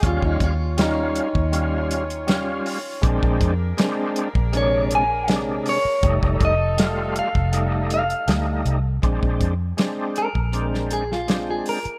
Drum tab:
HH |x-x-x-x-x-xxx-o-|x-x-x-x-x-x-x-o-|x-x-x-x-x-xxx-x-|x-x-x-x-x-x-x-ox|
SD |----o-------o---|----o-------o---|----o-------o---|----o----o-oo---|
BD |ooo----o--------|ooo----o--------|ooo----o--------|ooo----o--------|